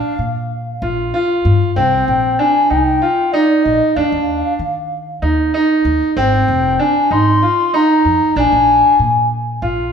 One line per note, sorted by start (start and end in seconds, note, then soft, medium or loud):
0.00 0.11 D4 medium
0.00 0.78 F5 medium
0.19 0.78 A#2 medium
0.82 1.11 A#1 medium
0.82 1.10 F4 medium
1.14 1.69 F4 medium
1.45 1.59 G2 medium
1.76 2.05 C2 medium
1.76 2.31 C4 medium
1.76 2.06 G5 loud
2.08 2.37 A#1 medium
2.08 2.41 G5 medium
2.39 2.67 D4 medium
2.39 2.71 G#5 medium
2.70 2.99 C2 medium
2.70 2.98 D#4 medium
2.70 2.79 G5 medium
2.78 2.85 G#5 medium
2.84 3.34 G5 medium
3.02 3.29 F4 medium
3.33 3.89 D#4 medium
3.33 3.65 D5 medium
3.64 3.80 A#1 medium
3.64 3.97 D#5 medium
3.95 4.11 D#2 medium
3.95 4.51 D4 medium
3.95 5.22 F5 medium
4.12 4.41 D#2 medium
4.59 5.18 D#3 medium
5.22 5.51 D#2 medium
5.22 5.50 D#4 medium
5.54 6.09 D#4 medium
5.85 5.99 D#2 medium
6.16 6.45 G#1 medium
6.16 6.71 C4 medium
6.16 6.82 G5 medium
6.48 6.77 F1 medium
6.79 7.07 D4 medium
6.79 7.14 G#5 medium
7.11 7.40 G#1 medium
7.11 7.38 D#4 medium
7.11 7.77 C6 loud
7.42 7.70 F4 medium
7.74 8.28 D#4 medium
7.74 8.38 A#5 medium
8.05 8.20 F2 medium
8.36 8.51 A#1 medium
8.36 8.91 D4 medium
8.36 9.59 G#5 medium
8.52 8.81 A#1 medium
9.00 9.58 A#2 medium
9.62 9.91 A#1 medium
9.62 9.90 F4 medium